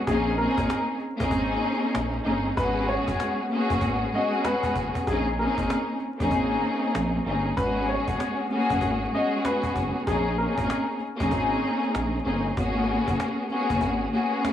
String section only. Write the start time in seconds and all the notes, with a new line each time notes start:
0.08 A#3 C4 C#4 D#4 G#4
0.38 A#3 C4 C#4 D#4 G#4
1.18 A#3 C4 C#4 D#4 G#4
2.24 A#3 C4 C#4 D#4 G#4
2.55 G#3 B3 C#4 F#4 G#4
3.50 A#3 B3 C#4 F#4 G#4
4.12 G#3 B3 C#4 F#4 G#4
5.08 A#3 C4 C#4 D#4 G#4
5.37 A#3 C4 C#4 D#4 G#4
6.18 A#3 C4 C#4 D#4 G#4
7.24 A#3 C4 C#4 D#4 G#4
7.55 G#3 B3 C#4 F#4 G#4
8.50 A#3 B3 C#4 F#4 G#4
9.12 G#3 B3 C#4 F#4 G#4
10.08 A#3 C4 C#4 D#4 G#4
10.37 A#3 C4 C#4 D#4 G#4
11.18 A#3 C4 C#4 D#4 G#4
12.24 A#3 C4 C#4 D#4 G#4
12.55 A#3 B3 C#4 F#4 G#4
13.50 A#3 B3 C#4 F#4 G#4
14.12 A#3 B3 C#4 F#4 G#4